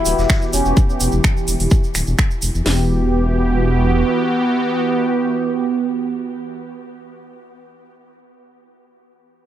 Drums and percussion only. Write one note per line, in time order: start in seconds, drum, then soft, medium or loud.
0.05 closed hi-hat medium
0.05 open hi-hat loud
0.05 shaker medium
0.18 snare soft
0.18 shaker soft
0.29 finger snap loud
0.29 kick loud
0.29 snare loud
0.29 closed hi-hat medium
0.29 shaker soft
0.42 shaker soft
0.53 closed hi-hat medium
0.53 open hi-hat loud
0.53 shaker medium
0.65 shaker soft
0.77 kick loud
0.77 shaker medium
0.89 shaker soft
1.00 open hi-hat loud
1.00 shaker loud
1.12 shaker soft
1.24 finger snap loud
1.24 kick loud
1.24 shaker medium
1.37 shaker soft
1.48 open hi-hat loud
1.48 shaker loud
1.60 open hi-hat medium
1.60 shaker soft
1.70 kick loud
1.70 shaker medium
1.84 shaker soft
1.95 finger snap soft
1.95 open hi-hat loud
1.95 shaker loud
2.07 shaker soft
2.18 finger snap loud
2.18 kick loud
2.18 shaker soft
2.31 shaker soft
2.42 open hi-hat loud
2.42 shaker medium
2.55 shaker soft
2.66 snare loud
2.66 open hi-hat medium